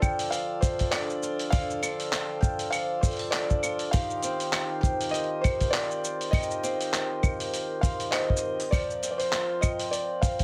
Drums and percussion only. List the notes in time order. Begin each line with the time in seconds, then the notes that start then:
0.02 kick, claves, shaker
0.19 open hi-hat, shaker
0.32 open hi-hat, shaker
0.62 kick, open hi-hat, shaker
0.79 kick, open hi-hat, shaker
0.93 clap, open hi-hat, claves, shaker
1.10 shaker
1.23 shaker
1.39 open hi-hat, shaker
1.53 kick, open hi-hat, shaker
1.70 shaker
1.83 open hi-hat, claves, shaker
2.00 open hi-hat, shaker
2.13 clap, open hi-hat, shaker
2.43 kick, shaker
2.59 open hi-hat, shaker
2.73 open hi-hat, claves, shaker
3.03 kick, open hi-hat, shaker
3.06 open hi-hat
3.08 open hi-hat
3.11 open hi-hat
3.13 open hi-hat
3.17 open hi-hat
3.19 open hi-hat
3.33 clap, open hi-hat, shaker
3.50 kick, shaker
3.63 claves, shaker
3.79 open hi-hat, shaker
3.93 kick, open hi-hat, shaker
4.10 shaker
4.23 open hi-hat, shaker
4.40 open hi-hat, shaker
4.53 clap, open hi-hat, claves, shaker
4.83 kick, shaker
5.01 open hi-hat, shaker
5.04 open hi-hat
5.09 open hi-hat
5.14 open hi-hat, shaker
5.24 open hi-hat
5.44 kick, open hi-hat, claves, shaker
5.61 kick, open hi-hat, shaker
5.74 clap, open hi-hat, shaker
5.91 shaker
6.05 shaker
6.21 open hi-hat, shaker
6.33 kick, open hi-hat, claves
6.42 shaker
6.51 shaker
6.64 open hi-hat, shaker
6.81 open hi-hat, shaker
6.94 clap, open hi-hat, shaker
7.23 kick, claves, shaker
7.40 open hi-hat, shaker
7.54 open hi-hat, shaker
7.83 kick, open hi-hat, shaker
8.00 open hi-hat, shaker
8.13 clap, open hi-hat, claves, shaker
8.30 kick
8.37 shaker
8.60 open hi-hat, shaker
8.73 kick, open hi-hat, claves, shaker
8.90 shaker
9.03 open hi-hat, shaker
9.20 open hi-hat, shaker
9.33 clap, open hi-hat, shaker
9.62 kick, claves, shaker
9.79 open hi-hat, shaker
9.93 open hi-hat, shaker
10.23 kick, open hi-hat, shaker
10.39 kick, open hi-hat, shaker